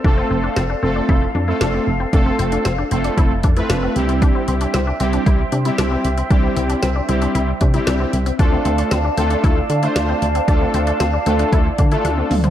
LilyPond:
<<
  \new Staff \with { instrumentName = "Flute section" } { \time 4/4 \key c \major \tempo 4 = 115 <a' f''>1~ | <a' f''>2.~ <a' f''>8 <c' e'' g''>8~ | <c' e'' g''>1~ | <c' e'' g''>1 |
<d' d'' f'' a''>1~ | <d' d'' f'' a''>1 | }
  \new Staff \with { instrumentName = "Analog polysynth" } { \time 4/4 \key c \major <a c' f' a'>4 r8 <a c' f' a'>8. r8 <a c' f' a'>8. r8 | <a c' f' a'>4 r8 <a c' f' a'>8. r8 <a c' f' b'>8. <g c' e' g'>8~ | <g c' e' g'>4 r8 <g c' e' g'>8. r8 <g c' e' g'>8. r8 | <g c' e' g'>4 r8 <g c' e' g'>8. r8 <g c' e' g'>8. r8 |
<a d' f' a'>4 r8 <a d' f' a'>8. r8 <a d' f' c''>8. r8 | <a d' f' a'>4 r8 <a d' f' a'>8. r8 <a d' f' a'>8. r8 | }
  \new Staff \with { instrumentName = "Synth arpeggio sound" } { \time 4/4 \key c \major d'16 c'16 c'16 d'16 c'16 d'16 c'16 d'16 e'8 d'16 e'16 d'16 c'8 c'16 | d'16 c'16 c'16 d'16 c'16 d'16 c'16 d'16 e'8 d'16 e'16 d'16 c'8 c'16 | d'16 c'16 c'16 d'16 c'16 d'16 c'16 d'16 e'8 d'16 e'16 d'16 c'8 c'16 | d'16 c'16 c'16 d'16 c'16 d'16 c'16 d'16 e'8 d'16 e'16 d'16 c'8 c'16 |
d'16 c'16 c'16 d'16 c'16 d'16 c'16 d'16 e'8 d'16 e'16 d'16 c'8 c'16 | d'16 c'16 c'16 d'16 c'16 d'16 c'16 d'16 e'8 d'16 e'16 d'16 c'8 c'16 | }
  \new Staff \with { instrumentName = "FM bass" } { \clef bass \time 4/4 \key c \major f,,8 f,,8 f,,8 f,,8 f,,8 f,8 f,,8 f,,8 | f,,8 f,,8 f,,8 f,,8 f,,8 f,8 f,,8 c,8~ | c,8 c,8 c,8 c,8 c,8 c8 c,8 c,8 | c,8 c,8 c,8 c,8 c,8 c8 c,8 c,8 |
d,8 d,8 d,8 d,8 d,8 d8 d,8 d,8 | d,8 d,8 d,8 d,8 d,8 d8 d,8 d,8 | }
  \new DrumStaff \with { instrumentName = "Drums" } \drummode { \time 4/4 bd4 sn4 bd4 sn4 | <hh bd>8 hh16 hh16 <hh sn>8 hh16 hh16 <hh bd>8 <hh bd>16 hh16 <hh sn>8 hh16 hh16 | <hh bd>8 hh16 hh16 <hh sn>8 hh16 hh16 <hh bd>8 hh16 hh16 <hh sn>8 hh16 hh16 | <hh bd>8 hh16 hh16 <hh sn>8 hh16 hh16 hh8 <hh bd>16 hh16 <hh sn>8 hh16 hh16 |
<hh bd>8 hh16 hh16 <hh sn>8 hh16 hh16 <hh bd>8 hh16 hh16 <hh sn>8 hh16 hh16 | <hh bd>8 hh16 hh16 <hh sn>8 hh16 hh16 <hh bd>8 <hh bd>16 hh16 <hh tommh>8 <hho toml>16 <hh tomfh>16 | }
>>